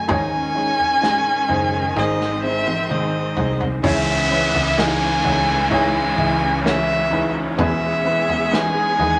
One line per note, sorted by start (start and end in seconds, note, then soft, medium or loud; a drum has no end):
0.00 0.11 F#4 medium
0.00 0.11 A4 medium
0.00 0.10 C#5 medium
0.00 0.11 D#5 medium
0.00 0.10 E5 medium
0.07 1.46 G#1 medium
0.07 0.32 G#2 medium
0.07 1.46 G#2 medium
0.07 0.32 C#3 medium
0.07 3.79 D#3 medium
0.07 1.46 D#3 medium
0.07 3.80 G#3 medium
0.07 0.32 G#3 medium
0.07 1.94 C#4 medium
0.07 0.33 C#4 medium
0.07 0.53 D#4 medium
0.07 0.31 D#4 medium
0.07 0.53 G#4 medium
0.07 0.30 G#4 medium
0.07 0.54 C#5 medium
0.07 2.00 G#5 loud
0.07 kick medium
0.07 floor tom loud
0.32 0.54 G#3 soft
0.32 0.55 C#4 soft
0.32 0.56 D#4 soft
0.32 0.55 G#4 soft
0.55 1.02 G#3 medium
0.55 1.03 C#4 medium
0.55 1.00 D#4 medium
0.55 1.03 D#4 medium
0.55 1.00 G#4 medium
0.55 1.03 G#4 medium
0.55 1.00 C#5 medium
0.80 floor tom medium
1.01 1.50 G#2 medium
1.01 1.50 C#3 medium
1.01 1.47 G#3 medium
1.01 1.49 C#4 medium
1.01 1.47 D#4 medium
1.01 1.50 D#4 medium
1.01 1.47 G#4 medium
1.01 1.51 G#4 medium
1.01 1.47 D#5 medium
1.01 snare loud
1.49 1.93 F#1 medium
1.49 1.73 G#3 medium
1.49 1.72 C#4 medium
1.49 1.94 D#4 medium
1.49 1.72 D#4 medium
1.49 1.94 G#4 medium
1.49 1.70 G#4 medium
1.49 1.94 C5 medium
1.49 floor tom medium
1.72 1.95 G#3 soft
1.72 1.97 C#4 soft
1.72 1.96 D#4 soft
1.72 1.96 G#4 medium
1.95 3.33 G#1 medium
1.95 2.19 G#2 medium
1.95 3.33 G#2 medium
1.95 2.20 D#3 medium
1.95 3.33 D#3 medium
1.95 2.20 G#3 medium
1.95 3.81 C4 medium
1.95 2.20 C4 medium
1.95 2.41 D#4 medium
1.95 2.19 D#4 medium
1.95 2.41 G#4 medium
1.95 2.18 G#4 medium
1.95 2.41 C5 medium
1.95 2.44 D#5 medium
1.95 kick medium
1.95 snare medium
2.20 2.41 G#3 soft
2.20 2.42 C4 soft
2.20 2.43 D#4 soft
2.20 2.43 G#4 medium
2.20 snare medium
2.42 2.66 G#3 medium
2.42 2.88 C4 medium
2.42 2.66 C4 medium
2.42 2.65 D#4 medium
2.42 2.88 G#4 medium
2.42 2.64 G#4 medium
2.42 2.88 C5 medium
2.42 2.93 E5 loud
2.65 2.88 G#3 soft
2.65 2.88 C4 soft
2.65 2.89 D#4 medium
2.65 2.89 G#4 medium
2.65 high tom medium
2.88 3.36 G#2 medium
2.88 3.36 D#3 medium
2.88 3.34 G#3 medium
2.88 3.35 C4 medium
2.88 3.34 D#4 medium
2.88 3.37 D#4 medium
2.88 3.35 G#4 medium
2.88 3.37 G#4 medium
2.88 3.35 C5 medium
2.88 3.61 D#5 medium
2.88 mid tom medium
3.35 3.81 C2 medium
3.35 3.82 G#3 medium
3.35 3.83 C4 medium
3.35 3.81 D#4 medium
3.35 3.84 D#4 medium
3.35 3.82 G#4 medium
3.35 3.83 G#4 medium
3.35 3.82 C5 medium
3.35 floor tom medium
3.61 floor tom medium
3.82 4.50 C#2 loud
3.82 5.20 G#2 medium
3.82 4.30 C#3 medium
3.82 7.55 C#3 medium
3.82 4.29 E3 medium
3.82 7.55 E3 medium
3.82 7.55 G#3 medium
3.82 4.29 C#4 medium
3.82 4.28 C#4 medium
3.82 9.20 C#4 medium
3.82 4.28 E4 medium
3.82 4.28 G#4 medium
3.82 4.31 G#4 medium
3.82 4.29 C#5 loud
3.82 4.80 E5 loud
3.82 kick medium
3.82 floor tom loud
3.82 crash medium
3.82 downlifter medium
4.30 4.76 E3 medium
4.30 4.75 C#4 medium
4.30 4.76 C#4 medium
4.30 4.75 E4 medium
4.30 4.76 G#4 medium
4.30 4.77 G#4 medium
4.30 4.76 B4 medium
4.54 5.20 C#2 loud
4.54 floor tom medium
4.76 5.24 C#3 medium
4.76 5.21 E3 medium
4.76 5.23 C#4 medium
4.76 5.22 D#4 medium
4.76 5.24 D#4 medium
4.76 5.22 E4 medium
4.76 5.22 G#4 medium
4.76 5.24 G#4 medium
4.76 5.23 D#5 medium
4.76 5.71 G#5 loud
4.76 snare loud
5.22 6.14 C#2 medium
5.22 5.47 E3 medium
5.22 5.48 C#4 medium
5.22 5.69 D#4 medium
5.22 5.46 D#4 medium
5.22 5.69 E4 medium
5.22 5.69 G#4 medium
5.22 5.45 G#4 medium
5.22 5.69 C#5 medium
5.22 floor tom medium
5.46 5.94 C#4 soft
5.46 5.93 D#4 medium
5.46 5.91 G#4 medium
5.70 6.15 D#4 loud
5.70 6.16 E4 medium
5.70 6.16 G#4 medium
5.70 6.16 C#5 loud
5.70 6.61 G#5 loud
5.70 kick medium
5.70 floor tom medium
5.93 6.16 C#4 soft
5.93 6.17 D#4 medium
5.93 6.17 G#4 medium
6.16 7.58 C#2 loud
6.16 6.40 E3 medium
6.16 6.41 C#4 medium
6.16 6.39 D#4 medium
6.16 6.62 E4 medium
6.16 6.63 G#4 medium
6.16 6.38 G#4 medium
6.16 6.62 D#5 medium
6.16 6.63 E5 medium
6.16 kick medium
6.39 6.62 C#4 soft
6.39 6.65 D#4 medium
6.39 6.64 G#4 medium
6.62 7.11 C#3 medium
6.62 7.08 E3 medium
6.62 7.09 C#4 medium
6.62 7.09 E4 medium
6.62 7.11 G#4 medium
6.62 7.10 G#4 medium
6.62 7.10 C#5 medium
6.62 snare loud
6.67 7.32 E5 loud
7.09 7.55 E3 medium
7.09 7.57 C#4 medium
7.09 7.56 D#4 medium
7.09 7.58 D#4 medium
7.09 7.56 E4 medium
7.09 7.57 G#4 medium
7.09 7.57 B4 medium
7.09 floor tom medium
7.56 8.95 E2 medium
7.56 8.95 B2 medium
7.56 8.03 E3 medium
7.56 9.20 G#3 medium
7.56 9.20 B3 medium
7.56 8.04 B3 medium
7.56 8.03 B3 medium
7.56 8.03 E4 medium
7.56 9.20 G#4 medium
7.56 8.06 G#4 medium
7.56 8.04 G#4 medium
7.56 8.04 B4 loud
7.56 8.55 E5 medium
7.56 kick medium
7.56 floor tom loud
8.04 8.50 E3 medium
8.04 8.50 B3 medium
8.04 8.51 B3 medium
8.04 8.50 E4 medium
8.04 8.50 G#4 medium
8.04 8.52 G#4 medium
8.04 8.51 B4 medium
8.29 floor tom medium
8.51 8.75 E3 medium
8.51 8.76 B3 medium
8.51 8.97 D#4 medium
8.51 8.75 D#4 medium
8.51 8.97 E4 medium
8.51 8.97 G#4 medium
8.51 8.74 G#4 medium
8.51 8.97 B4 medium
8.51 9.20 G#5 loud
8.51 snare loud
8.75 8.99 B3 soft
8.75 8.99 D#4 soft
8.75 8.99 G#4 soft
8.98 9.20 D#2 medium
8.98 9.20 E3 medium
8.98 9.20 B3 medium
8.98 9.20 D#4 medium
8.98 9.20 E4 medium
8.98 9.20 G#4 medium
8.98 9.20 B4 medium
8.98 floor tom medium